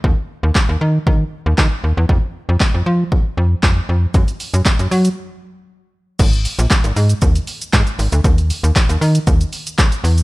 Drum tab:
CC |----------------|----------------|----------------|x---------------|
HH |----------------|----------------|xxoxxxox--------|xxoxxxoxxxoxxxox|
SH |----------------|----------------|xxxxxxxx--------|xxxxxxxxxxxxxxxx|
CP |----x-------x---|----x-------x---|----x-----------|----x-------x---|
SD |----o-------o---|----o-------o---|----o-----------|----o-------o---|
BD |o---o---o---o---|o---o---o---o---|o---o-----------|o---o---o---o---|

CC |----------------|
HH |xxoxxxoxxxoxxxox|
SH |xxxxxxxxxxxxxxxx|
CP |----x-------x---|
SD |----o-------o---|
BD |o---o---o---o---|